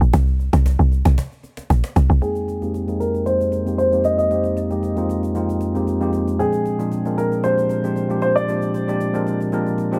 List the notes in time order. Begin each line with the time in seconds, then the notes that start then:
0.01 A#1, cajon slap
0.13 C2, cajon bass
0.26 cajon slap
0.39 cajon slap
0.53 C2, cajon slap
0.66 cajon bass
0.79 C2, cajon slap
0.92 cajon slap
1.05 C2, cajon slap
1.18 cajon bass
1.32 cajon slap
1.43 cajon slap
1.57 cajon slap
1.70 A#1, cajon bass
1.84 cajon slap
1.95 C2, cajon slap
2.10 C2, cajon slap
2.21 F2 G#3 A#3 C4 D#4 G#4 G5, cajon slap
2.35 cajon slap
2.48 cajon slap
2.61 F2 G#3 A#3 C4 D#4 G4, cajon slap
2.74 cajon slap
2.87 F2 G#3 A#3 C4 D#4 G#4, cajon slap
3.00 A#4, cajon slap
3.14 cajon slap
3.26 F2 G#3 A#3 C4 D#4 A#4 C5, cajon slap
3.40 cajon slap
3.52 cajon slap
3.65 F2 G#3 A#3 C4 D#4 G4, cajon slap
3.78 C5, cajon slap
3.91 F2 G#3 A#3 C4 D#4 G4, cajon slap
4.04 D#5, cajon slap
4.18 D#5, cajon slap
4.30 F2 G#3 A#3 C4 D#4 G4, cajon slap
4.44 cajon slap
4.57 cajon slap
4.70 F2 G#3 A#3 C4 D#4 G4, cajon slap
4.83 cajon slap
4.96 F2 G#3 A#3 C4 D#4 F4, cajon slap
5.09 cajon slap
5.23 cajon slap
5.34 F2 G#3 A#3 C4 D#4 F4, cajon slap
5.49 cajon slap
5.61 cajon slap
5.74 F2 G#3 A#3 C4 D#4 G4, cajon slap
5.87 cajon slap
6.00 F2 G#3 A#3 C4 D#4 G4, cajon slap
6.13 cajon slap
6.27 cajon slap
6.39 A#2 F3 G#3 C4 D4 G#4 G5, cajon slap
6.53 cajon slap
6.66 cajon slap
6.79 A#2 F3 G#3 C4 D4 G#4, cajon slap
6.92 cajon slap
7.05 A#2 F3 G#3 C4 D4 A#4, cajon slap
7.18 A#4, cajon slap
7.32 cajon slap
7.43 A#2 F3 G#3 C4 D4 G4 C5, cajon slap
7.58 cajon slap
7.69 cajon slap
7.83 A#2 F3 G#3 C4 D4 G4, cajon slap
7.96 cajon slap
8.09 A#2 F3 G#3 C4 D4 G4, cajon slap
8.22 C5, cajon slap
8.36 D5, cajon slap
8.48 A#2 F3 G#3 C4 D4 G4, cajon slap
8.61 cajon slap
8.74 cajon slap
8.87 A#2 F3 G#3 C4 D4 G4, cajon slap
9.00 cajon slap
9.13 A#2 F3 G#3 C4 D4 A#4, cajon slap
9.27 cajon slap
9.40 cajon slap
9.52 A#2 F3 G#3 C4 D4 A#4, cajon slap
9.67 cajon slap
9.78 cajon slap
9.92 A#2 F3 G#3 C4 D4 G4, cajon slap